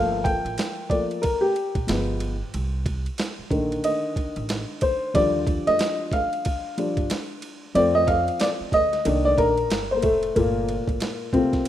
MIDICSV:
0, 0, Header, 1, 5, 480
1, 0, Start_track
1, 0, Tempo, 652174
1, 1867, Time_signature, 4, 2, 24, 8
1, 8600, End_track
2, 0, Start_track
2, 0, Title_t, "Upright piano"
2, 0, Program_c, 0, 0
2, 0, Note_on_c, 0, 53, 53
2, 0, Note_on_c, 0, 57, 53
2, 0, Note_on_c, 0, 58, 57
2, 0, Note_on_c, 0, 77, 98
2, 178, Note_on_c, 0, 79, 93
2, 192, Note_off_c, 0, 77, 0
2, 636, Note_off_c, 0, 53, 0
2, 638, Note_off_c, 0, 57, 0
2, 640, Note_off_c, 0, 58, 0
2, 661, Note_on_c, 0, 74, 84
2, 666, Note_on_c, 0, 53, 45
2, 669, Note_on_c, 0, 57, 37
2, 673, Note_on_c, 0, 58, 50
2, 677, Note_off_c, 0, 79, 0
2, 882, Note_off_c, 0, 53, 0
2, 884, Note_off_c, 0, 57, 0
2, 886, Note_off_c, 0, 58, 0
2, 896, Note_on_c, 0, 70, 88
2, 911, Note_off_c, 0, 74, 0
2, 1037, Note_on_c, 0, 67, 96
2, 1048, Note_off_c, 0, 70, 0
2, 1376, Note_on_c, 0, 53, 47
2, 1383, Note_on_c, 0, 56, 54
2, 1387, Note_on_c, 0, 59, 60
2, 1718, Note_off_c, 0, 53, 0
2, 1721, Note_off_c, 0, 56, 0
2, 1723, Note_off_c, 0, 59, 0
2, 2214, Note_off_c, 0, 67, 0
2, 2581, Note_on_c, 0, 51, 55
2, 2584, Note_on_c, 0, 58, 49
2, 2588, Note_on_c, 0, 50, 64
2, 2829, Note_on_c, 0, 75, 83
2, 3519, Note_off_c, 0, 75, 0
2, 3547, Note_on_c, 0, 72, 91
2, 3754, Note_off_c, 0, 51, 0
2, 3756, Note_off_c, 0, 58, 0
2, 3758, Note_off_c, 0, 50, 0
2, 3782, Note_on_c, 0, 53, 58
2, 3788, Note_on_c, 0, 55, 58
2, 3788, Note_on_c, 0, 74, 100
2, 3793, Note_on_c, 0, 50, 62
2, 3794, Note_off_c, 0, 72, 0
2, 4174, Note_on_c, 0, 75, 104
2, 4182, Note_off_c, 0, 74, 0
2, 4512, Note_on_c, 0, 77, 98
2, 4519, Note_off_c, 0, 75, 0
2, 4960, Note_off_c, 0, 77, 0
2, 4975, Note_off_c, 0, 53, 0
2, 4978, Note_off_c, 0, 55, 0
2, 4986, Note_on_c, 0, 53, 51
2, 4989, Note_on_c, 0, 55, 49
2, 4991, Note_on_c, 0, 62, 62
2, 5202, Note_off_c, 0, 53, 0
2, 5204, Note_off_c, 0, 55, 0
2, 5205, Note_off_c, 0, 62, 0
2, 5681, Note_off_c, 0, 50, 0
2, 5700, Note_on_c, 0, 53, 58
2, 5705, Note_on_c, 0, 57, 51
2, 5705, Note_on_c, 0, 74, 106
2, 5709, Note_on_c, 0, 60, 68
2, 5838, Note_off_c, 0, 74, 0
2, 5850, Note_on_c, 0, 75, 102
2, 5945, Note_on_c, 0, 77, 100
2, 5950, Note_off_c, 0, 75, 0
2, 6169, Note_off_c, 0, 77, 0
2, 6187, Note_on_c, 0, 74, 93
2, 6241, Note_off_c, 0, 74, 0
2, 6394, Note_off_c, 0, 53, 0
2, 6397, Note_off_c, 0, 57, 0
2, 6399, Note_off_c, 0, 60, 0
2, 6430, Note_on_c, 0, 75, 110
2, 6662, Note_on_c, 0, 51, 57
2, 6666, Note_on_c, 0, 58, 56
2, 6672, Note_on_c, 0, 62, 74
2, 6807, Note_on_c, 0, 74, 94
2, 6822, Note_off_c, 0, 75, 0
2, 6905, Note_on_c, 0, 70, 104
2, 6909, Note_off_c, 0, 74, 0
2, 7000, Note_off_c, 0, 51, 0
2, 7003, Note_off_c, 0, 58, 0
2, 7006, Note_off_c, 0, 62, 0
2, 7262, Note_off_c, 0, 70, 0
2, 7295, Note_on_c, 0, 72, 84
2, 7330, Note_on_c, 0, 58, 62
2, 7379, Note_on_c, 0, 57, 91
2, 7380, Note_off_c, 0, 58, 0
2, 7393, Note_on_c, 0, 45, 67
2, 7606, Note_off_c, 0, 72, 0
2, 7610, Note_off_c, 0, 57, 0
2, 7613, Note_off_c, 0, 45, 0
2, 7620, Note_on_c, 0, 58, 87
2, 7621, Note_on_c, 0, 57, 55
2, 7629, Note_on_c, 0, 46, 66
2, 7631, Note_on_c, 0, 65, 58
2, 8319, Note_off_c, 0, 46, 0
2, 8330, Note_off_c, 0, 57, 0
2, 8335, Note_off_c, 0, 58, 0
2, 8335, Note_off_c, 0, 65, 0
2, 8338, Note_on_c, 0, 60, 88
2, 8342, Note_on_c, 0, 57, 44
2, 8346, Note_on_c, 0, 58, 40
2, 8346, Note_on_c, 0, 65, 54
2, 8350, Note_on_c, 0, 48, 65
2, 8560, Note_off_c, 0, 57, 0
2, 8562, Note_off_c, 0, 65, 0
2, 8563, Note_off_c, 0, 58, 0
2, 8600, Note_off_c, 0, 48, 0
2, 8600, Note_off_c, 0, 60, 0
2, 8600, End_track
3, 0, Start_track
3, 0, Title_t, "Upright bass"
3, 0, Program_c, 1, 32
3, 0, Note_on_c, 1, 31, 102
3, 253, Note_off_c, 1, 31, 0
3, 330, Note_on_c, 1, 33, 90
3, 407, Note_off_c, 1, 33, 0
3, 1290, Note_on_c, 1, 34, 78
3, 1367, Note_off_c, 1, 34, 0
3, 1390, Note_on_c, 1, 31, 94
3, 1771, Note_off_c, 1, 31, 0
3, 1872, Note_on_c, 1, 36, 102
3, 2252, Note_off_c, 1, 36, 0
3, 2582, Note_on_c, 1, 34, 72
3, 2775, Note_off_c, 1, 34, 0
3, 3212, Note_on_c, 1, 33, 101
3, 3402, Note_off_c, 1, 33, 0
3, 3789, Note_on_c, 1, 39, 116
3, 4092, Note_off_c, 1, 39, 0
3, 4175, Note_on_c, 1, 41, 93
3, 4251, Note_off_c, 1, 41, 0
3, 5130, Note_on_c, 1, 43, 78
3, 5208, Note_off_c, 1, 43, 0
3, 5708, Note_on_c, 1, 41, 118
3, 6089, Note_off_c, 1, 41, 0
3, 6420, Note_on_c, 1, 38, 89
3, 6614, Note_off_c, 1, 38, 0
3, 6669, Note_on_c, 1, 36, 120
3, 6859, Note_off_c, 1, 36, 0
3, 6902, Note_on_c, 1, 34, 95
3, 7149, Note_off_c, 1, 34, 0
3, 7149, Note_on_c, 1, 31, 81
3, 7385, Note_off_c, 1, 31, 0
3, 7385, Note_on_c, 1, 29, 86
3, 7577, Note_off_c, 1, 29, 0
3, 7628, Note_on_c, 1, 31, 104
3, 7932, Note_off_c, 1, 31, 0
3, 8005, Note_on_c, 1, 33, 84
3, 8085, Note_off_c, 1, 33, 0
3, 8600, End_track
4, 0, Start_track
4, 0, Title_t, "Muted upright bass strokes"
4, 2492, Note_on_c, 9, 29, 47
4, 2566, Note_off_c, 9, 29, 0
4, 6331, Note_on_c, 9, 29, 47
4, 6405, Note_off_c, 9, 29, 0
4, 8600, End_track
5, 0, Start_track
5, 0, Title_t, "Drums"
5, 183, Note_on_c, 9, 36, 101
5, 189, Note_on_c, 9, 51, 54
5, 257, Note_off_c, 9, 36, 0
5, 262, Note_off_c, 9, 51, 0
5, 337, Note_on_c, 9, 51, 36
5, 411, Note_off_c, 9, 51, 0
5, 425, Note_on_c, 9, 44, 55
5, 425, Note_on_c, 9, 51, 76
5, 436, Note_on_c, 9, 38, 108
5, 498, Note_off_c, 9, 44, 0
5, 498, Note_off_c, 9, 51, 0
5, 510, Note_off_c, 9, 38, 0
5, 661, Note_on_c, 9, 36, 92
5, 669, Note_on_c, 9, 51, 50
5, 735, Note_off_c, 9, 36, 0
5, 742, Note_off_c, 9, 51, 0
5, 817, Note_on_c, 9, 51, 35
5, 890, Note_off_c, 9, 51, 0
5, 904, Note_on_c, 9, 51, 81
5, 914, Note_on_c, 9, 36, 89
5, 978, Note_off_c, 9, 51, 0
5, 987, Note_off_c, 9, 36, 0
5, 1148, Note_on_c, 9, 51, 48
5, 1221, Note_off_c, 9, 51, 0
5, 1290, Note_on_c, 9, 36, 79
5, 1290, Note_on_c, 9, 51, 40
5, 1363, Note_off_c, 9, 36, 0
5, 1363, Note_off_c, 9, 51, 0
5, 1385, Note_on_c, 9, 44, 57
5, 1385, Note_on_c, 9, 51, 81
5, 1393, Note_on_c, 9, 38, 123
5, 1458, Note_off_c, 9, 44, 0
5, 1458, Note_off_c, 9, 51, 0
5, 1467, Note_off_c, 9, 38, 0
5, 1622, Note_on_c, 9, 51, 63
5, 1695, Note_off_c, 9, 51, 0
5, 1868, Note_on_c, 9, 51, 69
5, 1942, Note_off_c, 9, 51, 0
5, 2103, Note_on_c, 9, 36, 97
5, 2105, Note_on_c, 9, 51, 58
5, 2177, Note_off_c, 9, 36, 0
5, 2179, Note_off_c, 9, 51, 0
5, 2253, Note_on_c, 9, 51, 38
5, 2327, Note_off_c, 9, 51, 0
5, 2341, Note_on_c, 9, 44, 60
5, 2341, Note_on_c, 9, 51, 77
5, 2352, Note_on_c, 9, 38, 120
5, 2414, Note_off_c, 9, 44, 0
5, 2414, Note_off_c, 9, 51, 0
5, 2426, Note_off_c, 9, 38, 0
5, 2580, Note_on_c, 9, 36, 89
5, 2586, Note_on_c, 9, 51, 47
5, 2654, Note_off_c, 9, 36, 0
5, 2660, Note_off_c, 9, 51, 0
5, 2738, Note_on_c, 9, 51, 38
5, 2812, Note_off_c, 9, 51, 0
5, 2825, Note_on_c, 9, 51, 83
5, 2899, Note_off_c, 9, 51, 0
5, 3063, Note_on_c, 9, 36, 79
5, 3068, Note_on_c, 9, 51, 48
5, 3137, Note_off_c, 9, 36, 0
5, 3141, Note_off_c, 9, 51, 0
5, 3210, Note_on_c, 9, 51, 40
5, 3283, Note_off_c, 9, 51, 0
5, 3304, Note_on_c, 9, 44, 59
5, 3304, Note_on_c, 9, 51, 77
5, 3312, Note_on_c, 9, 38, 116
5, 3377, Note_off_c, 9, 44, 0
5, 3377, Note_off_c, 9, 51, 0
5, 3386, Note_off_c, 9, 38, 0
5, 3541, Note_on_c, 9, 51, 73
5, 3547, Note_on_c, 9, 36, 98
5, 3615, Note_off_c, 9, 51, 0
5, 3621, Note_off_c, 9, 36, 0
5, 3788, Note_on_c, 9, 36, 117
5, 3789, Note_on_c, 9, 51, 75
5, 3862, Note_off_c, 9, 36, 0
5, 3863, Note_off_c, 9, 51, 0
5, 4023, Note_on_c, 9, 36, 99
5, 4027, Note_on_c, 9, 51, 56
5, 4097, Note_off_c, 9, 36, 0
5, 4101, Note_off_c, 9, 51, 0
5, 4176, Note_on_c, 9, 51, 44
5, 4249, Note_off_c, 9, 51, 0
5, 4263, Note_on_c, 9, 44, 52
5, 4263, Note_on_c, 9, 51, 80
5, 4274, Note_on_c, 9, 38, 108
5, 4336, Note_off_c, 9, 44, 0
5, 4336, Note_off_c, 9, 51, 0
5, 4347, Note_off_c, 9, 38, 0
5, 4501, Note_on_c, 9, 36, 89
5, 4508, Note_on_c, 9, 51, 49
5, 4574, Note_off_c, 9, 36, 0
5, 4582, Note_off_c, 9, 51, 0
5, 4657, Note_on_c, 9, 51, 40
5, 4731, Note_off_c, 9, 51, 0
5, 4746, Note_on_c, 9, 51, 79
5, 4754, Note_on_c, 9, 36, 94
5, 4820, Note_off_c, 9, 51, 0
5, 4828, Note_off_c, 9, 36, 0
5, 4989, Note_on_c, 9, 51, 61
5, 5063, Note_off_c, 9, 51, 0
5, 5130, Note_on_c, 9, 36, 88
5, 5130, Note_on_c, 9, 51, 40
5, 5203, Note_off_c, 9, 36, 0
5, 5204, Note_off_c, 9, 51, 0
5, 5225, Note_on_c, 9, 44, 59
5, 5225, Note_on_c, 9, 51, 85
5, 5233, Note_on_c, 9, 38, 116
5, 5298, Note_off_c, 9, 44, 0
5, 5298, Note_off_c, 9, 51, 0
5, 5307, Note_off_c, 9, 38, 0
5, 5462, Note_on_c, 9, 51, 66
5, 5536, Note_off_c, 9, 51, 0
5, 5707, Note_on_c, 9, 51, 69
5, 5780, Note_off_c, 9, 51, 0
5, 5942, Note_on_c, 9, 36, 94
5, 5945, Note_on_c, 9, 51, 53
5, 6016, Note_off_c, 9, 36, 0
5, 6018, Note_off_c, 9, 51, 0
5, 6093, Note_on_c, 9, 51, 41
5, 6167, Note_off_c, 9, 51, 0
5, 6180, Note_on_c, 9, 44, 55
5, 6180, Note_on_c, 9, 51, 85
5, 6191, Note_on_c, 9, 38, 113
5, 6253, Note_off_c, 9, 44, 0
5, 6253, Note_off_c, 9, 51, 0
5, 6264, Note_off_c, 9, 38, 0
5, 6419, Note_on_c, 9, 36, 77
5, 6424, Note_on_c, 9, 51, 50
5, 6492, Note_off_c, 9, 36, 0
5, 6498, Note_off_c, 9, 51, 0
5, 6572, Note_on_c, 9, 38, 33
5, 6573, Note_on_c, 9, 51, 39
5, 6645, Note_off_c, 9, 38, 0
5, 6647, Note_off_c, 9, 51, 0
5, 6663, Note_on_c, 9, 51, 89
5, 6736, Note_off_c, 9, 51, 0
5, 6901, Note_on_c, 9, 36, 95
5, 6905, Note_on_c, 9, 51, 50
5, 6975, Note_off_c, 9, 36, 0
5, 6979, Note_off_c, 9, 51, 0
5, 7047, Note_on_c, 9, 51, 38
5, 7121, Note_off_c, 9, 51, 0
5, 7142, Note_on_c, 9, 44, 67
5, 7142, Note_on_c, 9, 51, 84
5, 7151, Note_on_c, 9, 38, 117
5, 7216, Note_off_c, 9, 44, 0
5, 7216, Note_off_c, 9, 51, 0
5, 7224, Note_off_c, 9, 38, 0
5, 7378, Note_on_c, 9, 51, 70
5, 7385, Note_on_c, 9, 36, 101
5, 7451, Note_off_c, 9, 51, 0
5, 7459, Note_off_c, 9, 36, 0
5, 7527, Note_on_c, 9, 51, 44
5, 7600, Note_off_c, 9, 51, 0
5, 7626, Note_on_c, 9, 36, 102
5, 7626, Note_on_c, 9, 51, 67
5, 7700, Note_off_c, 9, 36, 0
5, 7700, Note_off_c, 9, 51, 0
5, 7864, Note_on_c, 9, 51, 48
5, 7938, Note_off_c, 9, 51, 0
5, 8004, Note_on_c, 9, 36, 83
5, 8013, Note_on_c, 9, 51, 34
5, 8078, Note_off_c, 9, 36, 0
5, 8087, Note_off_c, 9, 51, 0
5, 8099, Note_on_c, 9, 44, 51
5, 8099, Note_on_c, 9, 51, 78
5, 8110, Note_on_c, 9, 38, 105
5, 8173, Note_off_c, 9, 44, 0
5, 8173, Note_off_c, 9, 51, 0
5, 8184, Note_off_c, 9, 38, 0
5, 8337, Note_on_c, 9, 36, 76
5, 8344, Note_on_c, 9, 51, 41
5, 8411, Note_off_c, 9, 36, 0
5, 8417, Note_off_c, 9, 51, 0
5, 8486, Note_on_c, 9, 36, 73
5, 8487, Note_on_c, 9, 38, 29
5, 8488, Note_on_c, 9, 51, 37
5, 8559, Note_off_c, 9, 36, 0
5, 8560, Note_off_c, 9, 38, 0
5, 8562, Note_off_c, 9, 51, 0
5, 8578, Note_on_c, 9, 51, 81
5, 8600, Note_off_c, 9, 51, 0
5, 8600, End_track
0, 0, End_of_file